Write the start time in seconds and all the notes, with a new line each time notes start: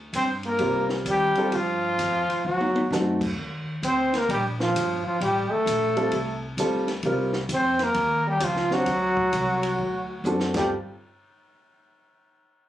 Already playing: D2
0.13 G2 C4 C5, kick, hi-hat pedal, ride
0.43 A#3, ride
0.47 A#4
0.59 C2 G3 C4 F4 A#4, kick, ride
0.89 snare
1.05 D#2 G3, kick, hi-hat pedal, ride
1.10 G4
1.35 G3 C4 F4 A4, muted upright bass stroke, ride
1.52 G2 F3 F4, kick, ride
1.98 F2, kick, hi-hat pedal, ride
2.29 muted upright bass stroke, ride
2.45 D2 F#3 F#4
2.61 high tom
2.76 high tom
2.90 F#2 A3 C4 D#4 F#4, snare, hi-hat pedal
3.21 kick, crash
3.37 D#2, kick
3.82 D2 C4, kick, hi-hat pedal, ride
3.87 C5
4.13 A#3, snare, ride
4.18 A#4
4.29 A#1 G3 G4, kick, ride
4.60 F3 F4, snare
4.75 G1, kick, hi-hat pedal, ride
5.04 F3 F4, muted upright bass stroke
5.21 A1 G3 G4, kick, ride
5.51 A3 A4, muted upright bass stroke
5.66 A#1, kick, hi-hat pedal, ride
5.96 G3 C4 F4 A4, ride
6.11 C2, kick, ride
6.57 D2 G3 C4 F4 A4, kick, hi-hat pedal, ride
6.88 snare, ride
7.03 C2 G3 C4 F4 A#4, kick, ride
7.33 snare
7.49 F2 C4, kick, hi-hat pedal, ride
7.55 C5
7.79 A#3, snare, ride
7.84 A#4
7.94 D#2, kick, ride
8.27 G3 G4
8.40 C#2 F3, kick, hi-hat pedal, ride
8.44 F4
8.56 snare
8.71 F#3 C4 D4 F#4 C5, snare
8.86 D2, kick, ride
9.17 kick
9.32 C2, hi-hat pedal, ride
9.63 ride
9.78 D2, kick
10.24 F#2 C4 D4 F#4 A4, hi-hat pedal, high tom
10.40 snare
10.54 G1 G3 C4 F4 G4 A4, kick, snare, crash